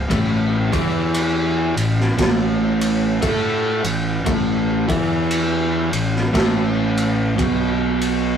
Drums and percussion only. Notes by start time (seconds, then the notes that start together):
0.10 kick, ride
0.73 kick, ride
1.14 ride
1.77 ride
2.00 snare
2.18 kick, snare, ride
2.81 ride
3.22 kick, ride
3.84 ride
4.26 kick, ride
4.89 kick, ride
5.31 ride
5.93 ride
6.16 snare
6.34 kick, snare, ride
6.97 ride
7.38 kick, ride
8.01 ride